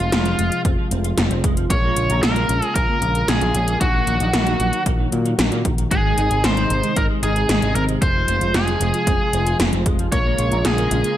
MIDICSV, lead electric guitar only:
0, 0, Header, 1, 2, 480
1, 0, Start_track
1, 0, Tempo, 526316
1, 1552, Time_signature, 4, 2, 24, 8
1, 10190, End_track
2, 0, Start_track
2, 0, Title_t, "Lead electric guitar"
2, 0, Program_c, 0, 29
2, 0, Note_on_c, 0, 65, 83
2, 557, Note_off_c, 0, 65, 0
2, 1552, Note_on_c, 0, 73, 109
2, 2027, Note_off_c, 0, 73, 0
2, 2031, Note_on_c, 0, 70, 99
2, 2501, Note_off_c, 0, 70, 0
2, 2511, Note_on_c, 0, 70, 96
2, 2992, Note_on_c, 0, 68, 89
2, 3006, Note_off_c, 0, 70, 0
2, 3439, Note_off_c, 0, 68, 0
2, 3474, Note_on_c, 0, 66, 84
2, 4397, Note_off_c, 0, 66, 0
2, 5392, Note_on_c, 0, 68, 97
2, 5873, Note_on_c, 0, 72, 111
2, 5887, Note_off_c, 0, 68, 0
2, 6355, Note_on_c, 0, 70, 100
2, 6367, Note_off_c, 0, 72, 0
2, 6419, Note_off_c, 0, 70, 0
2, 6595, Note_on_c, 0, 68, 93
2, 7072, Note_off_c, 0, 68, 0
2, 7075, Note_on_c, 0, 70, 80
2, 7140, Note_off_c, 0, 70, 0
2, 7314, Note_on_c, 0, 72, 106
2, 7795, Note_on_c, 0, 68, 78
2, 7808, Note_off_c, 0, 72, 0
2, 8717, Note_off_c, 0, 68, 0
2, 9231, Note_on_c, 0, 73, 108
2, 9712, Note_on_c, 0, 68, 95
2, 9726, Note_off_c, 0, 73, 0
2, 10190, Note_off_c, 0, 68, 0
2, 10190, End_track
0, 0, End_of_file